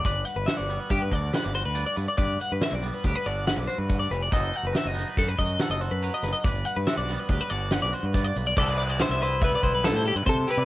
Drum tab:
CC |----------|----------|----------|----------|
HH |xxxxxxxxxx|xxxxxxxxxx|xxxxxxxxxx|xxxxxxxxxx|
SD |--o---o---|--o---o---|--ooo-o--o|--oo--o-o-|
BD |o---oo----|o---o---o-|o---oo----|o---o---o-|

CC |x---------|
HH |-xxxxxxxxx|
SD |--o-o-o---|
BD |o---oo--o-|